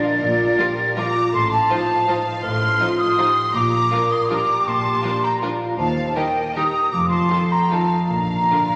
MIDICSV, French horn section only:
0, 0, Header, 1, 2, 480
1, 0, Start_track
1, 0, Key_signature, -2, "major"
1, 0, Tempo, 365186
1, 298, Time_signature, 3, 2, 24, 8
1, 3677, Tempo, 373599
1, 7997, Tempo, 379987
1, 9437, Tempo, 409277
1, 11145, End_track
2, 0, Start_track
2, 0, Title_t, "French horn section"
2, 0, Program_c, 0, 60
2, 0, Note_on_c, 0, 62, 63
2, 268, Note_off_c, 0, 62, 0
2, 301, Note_on_c, 0, 65, 62
2, 770, Note_off_c, 0, 65, 0
2, 782, Note_on_c, 0, 67, 60
2, 1276, Note_off_c, 0, 67, 0
2, 1276, Note_on_c, 0, 65, 57
2, 1752, Note_on_c, 0, 69, 64
2, 1754, Note_off_c, 0, 65, 0
2, 2224, Note_off_c, 0, 69, 0
2, 2238, Note_on_c, 0, 65, 59
2, 2721, Note_on_c, 0, 72, 62
2, 2729, Note_off_c, 0, 65, 0
2, 3201, Note_off_c, 0, 72, 0
2, 3201, Note_on_c, 0, 69, 62
2, 3673, Note_off_c, 0, 69, 0
2, 3680, Note_on_c, 0, 65, 58
2, 4157, Note_off_c, 0, 65, 0
2, 4163, Note_on_c, 0, 67, 62
2, 4629, Note_off_c, 0, 67, 0
2, 4651, Note_on_c, 0, 65, 56
2, 5105, Note_on_c, 0, 70, 58
2, 5117, Note_off_c, 0, 65, 0
2, 5607, Note_off_c, 0, 70, 0
2, 5615, Note_on_c, 0, 67, 65
2, 7020, Note_off_c, 0, 67, 0
2, 7044, Note_on_c, 0, 65, 51
2, 7513, Note_on_c, 0, 72, 60
2, 7515, Note_off_c, 0, 65, 0
2, 7984, Note_off_c, 0, 72, 0
2, 7999, Note_on_c, 0, 70, 51
2, 8493, Note_on_c, 0, 67, 48
2, 8498, Note_off_c, 0, 70, 0
2, 8956, Note_off_c, 0, 67, 0
2, 8962, Note_on_c, 0, 65, 49
2, 9435, Note_on_c, 0, 69, 48
2, 9438, Note_off_c, 0, 65, 0
2, 9901, Note_on_c, 0, 65, 46
2, 9913, Note_off_c, 0, 69, 0
2, 10232, Note_off_c, 0, 65, 0
2, 10373, Note_on_c, 0, 62, 43
2, 11145, Note_off_c, 0, 62, 0
2, 11145, End_track
0, 0, End_of_file